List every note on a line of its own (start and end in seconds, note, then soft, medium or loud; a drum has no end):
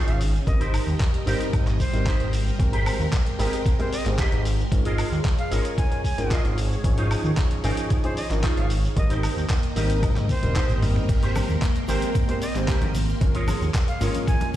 0.00 0.43 C#4 medium
0.00 0.20 D#4 medium
0.00 0.45 D#4 medium
0.00 0.21 F4 medium
0.00 0.21 G#4 medium
0.00 0.45 G#4 medium
0.00 0.21 C#5 loud
0.07 0.39 G#1 loud
0.07 0.20 F5 medium
0.07 closed hi-hat soft
0.21 open hi-hat medium
0.21 shaker medium
0.35 shaker soft
0.47 0.78 G#1 loud
0.47 0.56 G3 medium
0.47 2.58 G3 medium
0.47 0.57 C4 medium
0.47 0.57 D#4 medium
0.47 4.68 A#4 medium
0.47 0.57 A#4 medium
0.47 0.59 D#5 loud
0.47 2.57 D#5 loud
0.47 4.68 G5 medium
0.47 muted clean electric guitar stroke loud
0.47 kick loud
0.47 closed hi-hat medium
0.47 shaker soft
0.60 0.93 D#4 medium
0.60 0.93 G4 medium
0.60 0.93 A#4 medium
0.60 0.94 C5 loud
0.60 closed hi-hat soft
0.60 shaker soft
0.74 open hi-hat loud
0.74 high woodblock medium
0.74 shaker medium
0.87 0.95 D#2 medium
0.87 shaker soft
1.00 kick loud
1.00 clap loud
1.00 closed hi-hat medium
1.00 shaker soft
1.14 closed hi-hat soft
1.26 1.35 G#1 loud
1.26 1.76 G3 medium
1.26 1.77 C4 medium
1.26 1.46 D#4 medium
1.26 1.77 D#4 medium
1.26 1.47 G4 medium
1.26 1.47 A#4 medium
1.26 1.77 A#4 medium
1.26 1.47 C5 medium
1.26 open hi-hat loud
1.26 shaker medium
1.41 closed hi-hat medium
1.41 shaker soft
1.53 1.85 G#1 medium
1.53 kick loud
1.53 closed hi-hat medium
1.53 high woodblock medium
1.53 shaker soft
1.66 muted clean electric guitar stroke loud
1.66 clap soft
1.66 closed hi-hat soft
1.66 shaker soft
1.79 2.33 C5 medium
1.79 muted clean electric guitar stroke soft
1.79 kick medium
1.79 open hi-hat loud
1.79 shaker medium
1.93 2.09 G#1 medium
1.93 2.08 G3 medium
1.93 2.08 C4 medium
1.93 2.08 D#4 medium
1.93 2.08 A#4 loud
1.93 muted clean electric guitar stroke soft
1.93 closed hi-hat soft
1.93 shaker soft
2.05 2.33 D#4 medium
2.05 2.33 G4 medium
2.05 2.33 A#4 medium
2.05 2.33 C5 loud
2.05 kick loud
2.05 clap loud
2.05 closed hi-hat medium
2.05 shaker soft
2.20 2.51 G#1 medium
2.20 closed hi-hat soft
2.33 open hi-hat medium
2.33 shaker medium
2.47 shaker soft
2.59 2.91 G#1 loud
2.59 3.36 G#3 medium
2.59 6.80 G#3 medium
2.59 3.36 C4 medium
2.59 3.37 A#4 medium
2.59 3.36 G5 medium
2.59 6.80 C6 loud
2.59 muted clean electric guitar stroke loud
2.59 kick loud
2.59 closed hi-hat medium
2.59 shaker soft
2.72 3.06 G4 loud
2.72 3.06 G#4 medium
2.72 3.06 A#4 medium
2.72 3.06 C5 medium
2.72 closed hi-hat soft
2.86 open hi-hat loud
2.86 high woodblock medium
2.86 shaker medium
3.00 3.07 D#2 medium
3.00 shaker soft
3.13 kick loud
3.13 clap loud
3.13 closed hi-hat medium
3.13 shaker soft
3.26 closed hi-hat soft
3.38 3.47 G#1 loud
3.38 3.76 G#3 medium
3.38 3.76 C4 medium
3.38 3.59 G4 medium
3.38 3.59 G#4 medium
3.38 3.59 A#4 medium
3.38 3.76 A#4 loud
3.38 3.59 D#5 medium
3.38 3.76 G5 medium
3.38 open hi-hat loud
3.38 shaker medium
3.53 closed hi-hat medium
3.53 shaker soft
3.65 3.74 G#1 medium
3.65 kick loud
3.65 closed hi-hat medium
3.65 shaker soft
3.79 3.94 G#3 loud
3.79 3.94 C4 medium
3.79 3.94 G4 medium
3.79 3.94 A#4 loud
3.79 3.90 C5 medium
3.79 muted clean electric guitar stroke loud
3.79 closed hi-hat soft
3.92 4.05 D#5 medium
3.92 muted clean electric guitar stroke soft
3.92 open hi-hat loud
3.92 shaker medium
4.06 4.22 G#1 medium
4.06 4.15 G#3 medium
4.06 4.15 C4 medium
4.06 4.15 G4 medium
4.06 4.15 C5 medium
4.06 muted clean electric guitar stroke soft
4.06 clap soft
4.06 closed hi-hat soft
4.06 shaker soft
4.18 4.45 G4 medium
4.18 4.45 G#4 medium
4.18 4.45 A#4 medium
4.18 4.45 D#5 loud
4.18 kick loud
4.18 clap loud
4.18 closed hi-hat medium
4.18 shaker soft
4.32 4.64 G#1 loud
4.32 closed hi-hat soft
4.45 open hi-hat medium
4.45 shaker medium
4.60 shaker soft
4.71 5.03 G#1 loud
4.71 4.81 G#3 medium
4.71 4.81 C#4 medium
4.71 4.82 F4 medium
4.71 8.93 G#4 medium
4.71 4.82 A#4 medium
4.71 8.93 C#5 medium
4.71 muted clean electric guitar stroke loud
4.71 kick loud
4.71 closed hi-hat medium
4.71 shaker soft
4.85 5.18 F4 medium
4.85 5.18 G#4 medium
4.85 5.18 A#4 medium
4.85 5.19 D#5 loud
4.85 closed hi-hat medium
4.98 open hi-hat loud
4.98 high woodblock medium
4.98 shaker medium
5.12 5.20 D#2 medium
5.12 shaker soft
5.25 kick loud
5.25 clap loud
5.25 closed hi-hat medium
5.25 shaker soft
5.38 5.51 F5 medium
5.38 closed hi-hat soft
5.51 5.60 G#1 loud
5.51 6.01 G#3 medium
5.51 6.01 C#4 medium
5.51 6.01 F4 medium
5.51 5.71 F4 medium
5.51 5.71 G#4 medium
5.51 5.71 A#4 medium
5.51 6.02 A#4 medium
5.51 5.71 C#5 loud
5.51 open hi-hat medium
5.51 shaker medium
5.65 closed hi-hat medium
5.65 shaker soft
5.78 5.86 G#1 medium
5.78 6.02 G#5 medium
5.78 kick loud
5.78 closed hi-hat medium
5.78 shaker soft
5.91 muted clean electric guitar stroke loud
5.91 closed hi-hat soft
6.04 6.44 G#5 loud
6.04 muted clean electric guitar stroke soft
6.04 kick medium
6.04 open hi-hat medium
6.04 shaker medium
6.18 6.34 G#1 medium
6.18 6.33 G#3 medium
6.18 6.33 C#4 medium
6.18 6.33 F4 medium
6.18 6.33 A#4 loud
6.18 muted clean electric guitar stroke soft
6.18 closed hi-hat soft
6.18 shaker soft
6.31 6.57 F4 medium
6.31 6.58 G#4 medium
6.31 6.58 A#4 medium
6.31 6.58 D#5 loud
6.31 kick loud
6.31 clap loud
6.31 closed hi-hat medium
6.31 shaker soft
6.44 6.76 G#1 loud
6.44 closed hi-hat soft
6.58 open hi-hat medium
6.58 shaker medium
6.72 shaker soft
6.83 7.16 G#1 loud
6.83 7.60 F3 medium
6.83 7.61 C#4 medium
6.83 7.61 D#4 medium
6.83 8.95 D#4 medium
6.83 7.61 G#4 medium
6.83 muted clean electric guitar stroke loud
6.83 kick loud
6.83 closed hi-hat medium
6.83 shaker soft
6.97 7.31 D#4 loud
6.97 7.31 F4 medium
6.97 7.31 G#4 medium
6.97 7.31 C#5 medium
6.97 closed hi-hat medium
7.11 open hi-hat loud
7.11 high woodblock medium
7.11 shaker medium
7.24 7.32 D#2 medium
7.24 shaker soft
7.37 kick loud
7.37 clap loud
7.37 closed hi-hat medium
7.37 shaker soft
7.51 closed hi-hat soft
7.63 7.72 G#1 loud
7.63 8.00 F3 medium
7.63 8.01 C#4 medium
7.63 7.84 D#4 medium
7.63 8.01 D#4 medium
7.63 7.84 F4 medium
7.63 7.84 G#4 medium
7.63 8.01 G#4 loud
7.63 7.84 A#4 loud
7.63 open hi-hat medium
7.63 shaker medium
7.77 closed hi-hat medium
7.77 shaker soft
7.90 7.99 G#1 medium
7.90 kick loud
7.90 closed hi-hat medium
7.90 shaker soft
8.03 8.18 F3 loud
8.03 8.19 C#4 medium
8.03 8.19 D#4 medium
8.03 8.19 G#4 loud
8.03 8.14 C5 medium
8.03 muted clean electric guitar stroke loud
8.03 closed hi-hat soft
8.16 8.29 D#5 medium
8.16 muted clean electric guitar stroke soft
8.16 open hi-hat loud
8.16 shaker medium
8.30 8.46 G#1 medium
8.30 8.39 F3 medium
8.30 8.40 C#4 medium
8.30 8.40 D#4 medium
8.30 8.40 A#4 medium
8.30 muted clean electric guitar stroke soft
8.30 clap soft
8.30 closed hi-hat soft
8.30 shaker soft
8.43 8.70 D#4 medium
8.43 8.70 F4 medium
8.43 8.70 G#4 medium
8.43 8.70 C#5 loud
8.43 kick loud
8.43 clap loud
8.43 closed hi-hat medium
8.43 shaker soft
8.57 8.88 G#1 loud
8.57 8.70 F5 medium
8.57 closed hi-hat soft
8.70 open hi-hat medium
8.70 shaker medium
8.84 shaker soft
8.96 9.28 G#1 loud
8.96 9.06 G3 medium
8.96 14.56 A#3 medium
8.96 9.06 C4 medium
8.96 9.06 D#4 medium
8.96 13.17 A#4 medium
8.96 9.06 A#4 medium
8.96 11.07 D#5 medium
8.96 9.10 D#5 loud
8.96 13.18 G5 medium
8.96 muted clean electric guitar stroke loud
8.96 kick loud
8.96 closed hi-hat medium
8.96 shaker soft
9.10 9.43 D#4 loud
9.10 9.43 G4 medium
9.10 9.43 A#4 medium
9.10 9.43 C5 medium
9.10 closed hi-hat medium
9.10 shaker soft
9.23 open hi-hat loud
9.23 high woodblock medium
9.23 shaker medium
9.37 9.45 D#2 medium
9.37 shaker soft
9.50 kick loud
9.50 clap loud
9.50 closed hi-hat medium
9.50 shaker soft
9.63 closed hi-hat soft
9.76 10.04 G#1 loud
9.76 10.26 G3 medium
9.76 10.26 C4 medium
9.76 9.96 D#4 medium
9.76 10.26 D#4 medium
9.76 9.96 G4 medium
9.76 9.96 A#4 medium
9.76 10.26 A#4 medium
9.76 9.96 D#5 medium
9.76 open hi-hat medium
9.76 shaker medium
9.90 closed hi-hat medium
9.90 shaker soft
10.03 10.34 G#2 medium
10.03 kick loud
10.03 closed hi-hat medium
10.03 high tom medium
10.03 high woodblock medium
10.03 shaker soft
10.16 muted clean electric guitar stroke loud
10.16 clap soft
10.16 closed hi-hat soft
10.16 high tom medium
10.16 shaker soft
10.29 10.83 C5 loud
10.29 muted clean electric guitar stroke soft
10.29 kick medium
10.29 open hi-hat loud
10.29 high tom medium
10.29 shaker medium
10.43 10.59 D#1 medium
10.43 10.52 G3 medium
10.43 10.52 C4 medium
10.43 10.52 D#4 medium
10.43 10.52 A#4 medium
10.43 muted clean electric guitar stroke soft
10.43 closed hi-hat soft
10.43 mid tom medium
10.43 shaker soft
10.55 10.82 D#4 medium
10.55 10.82 G4 medium
10.55 10.82 A#4 medium
10.55 10.82 C5 medium
10.55 kick loud
10.55 clap loud
10.55 closed hi-hat medium
10.55 mid tom medium
10.55 shaker soft
10.70 11.01 G#1 loud
10.70 closed hi-hat soft
10.70 shaker soft
10.82 11.06 G3 medium
10.82 11.06 C4 medium
10.82 11.06 D#4 medium
10.82 11.06 A#4 medium
10.82 mid tom loud
10.82 open hi-hat medium
10.82 shaker medium
10.96 mid tom medium
10.96 shaker soft
11.08 11.40 G#1 loud
11.08 11.85 G#3 medium
11.08 11.85 C4 medium
11.08 11.86 A#4 medium
11.08 11.86 G5 medium
11.08 14.56 C6 medium
11.08 muted clean electric guitar stroke loud
11.08 kick loud
11.08 closed hi-hat medium
11.08 crash medium
11.08 shaker medium
11.08 shaker soft
11.22 11.56 G4 medium
11.22 11.56 G#4 medium
11.22 11.56 A#4 medium
11.22 11.56 C5 loud
11.22 closed hi-hat medium
11.22 shaker soft
11.35 open hi-hat loud
11.35 high conga loud
11.35 low conga medium
11.35 high woodblock medium
11.35 shaker loud
11.35 shaker medium
11.49 11.57 D#2 medium
11.49 shaker soft
11.62 kick loud
11.62 clap loud
11.62 closed hi-hat medium
11.62 shaker medium
11.62 shaker soft
11.75 closed hi-hat soft
11.75 shaker soft
11.88 11.97 G#1 loud
11.88 12.25 G#3 medium
11.88 12.25 C4 medium
11.88 12.08 G4 medium
11.88 12.09 G#4 medium
11.88 12.09 A#4 medium
11.88 12.26 A#4 loud
11.88 12.09 C5 loud
11.88 12.26 G5 medium
11.88 open hi-hat medium
11.88 muted conga soft
11.88 shaker medium
12.02 closed hi-hat medium
12.02 high conga medium
12.02 shaker soft
12.15 12.23 G#1 medium
12.15 kick loud
12.15 closed hi-hat medium
12.15 shaker soft
12.28 12.43 G#3 loud
12.28 12.43 C4 medium
12.28 12.44 G4 medium
12.28 12.44 A#4 loud
12.28 12.39 C5 medium
12.28 muted clean electric guitar stroke loud
12.28 closed hi-hat soft
12.28 shaker soft
12.41 12.54 D#5 medium
12.41 muted clean electric guitar stroke soft
12.41 open hi-hat loud
12.41 shaker medium
12.54 12.71 G#1 medium
12.54 12.64 G#3 medium
12.54 12.65 C4 medium
12.54 12.65 G4 medium
12.54 12.65 C5 medium
12.54 muted clean electric guitar stroke soft
12.54 clap soft
12.54 closed hi-hat soft
12.54 shaker soft
12.68 12.95 G4 medium
12.68 12.95 G#4 medium
12.68 12.95 A#4 medium
12.68 12.95 C5 medium
12.68 kick loud
12.68 clap loud
12.68 closed hi-hat medium
12.68 shaker medium
12.68 shaker soft
12.81 13.13 G#1 loud
12.81 closed hi-hat soft
12.81 high conga medium
12.81 shaker soft
12.94 open hi-hat medium
12.94 low conga medium
12.94 shaker medium
13.08 shaker soft
13.21 13.53 G#1 loud
13.21 13.31 G#3 medium
13.21 13.31 C#4 medium
13.21 13.31 F4 medium
13.21 14.56 G#4 medium
13.21 13.31 A#4 medium
13.21 14.56 C#5 loud
13.21 muted clean electric guitar stroke loud
13.21 kick loud
13.21 closed hi-hat medium
13.21 shaker soft
13.35 13.68 F4 medium
13.35 13.68 G#4 medium
13.35 13.68 A#4 medium
13.35 13.68 C#5 loud
13.35 closed hi-hat medium
13.35 shaker soft
13.48 open hi-hat loud
13.48 high conga medium
13.48 low conga medium
13.48 high woodblock medium
13.48 shaker medium
13.61 13.69 D#2 medium
13.61 shaker soft
13.74 kick loud
13.74 clap loud
13.74 closed hi-hat medium
13.74 shaker medium
13.74 shaker soft
13.88 14.00 F5 medium
13.88 closed hi-hat soft
13.88 shaker soft
14.00 14.09 G#1 loud
14.00 14.51 G#3 medium
14.00 14.51 C#4 medium
14.00 14.21 F4 medium
14.00 14.51 F4 medium
14.00 14.21 G#4 medium
14.00 14.21 A#4 medium
14.00 14.51 A#4 medium
14.00 14.21 C#5 medium
14.00 open hi-hat loud
14.00 muted conga soft
14.00 shaker medium
14.14 closed hi-hat medium
14.14 high conga medium
14.14 shaker soft
14.27 14.36 G#1 medium
14.27 14.51 G#5 loud
14.27 kick loud
14.27 closed hi-hat medium
14.27 shaker medium
14.27 shaker soft
14.40 muted clean electric guitar stroke loud
14.40 closed hi-hat soft
14.40 muted conga medium
14.40 shaker soft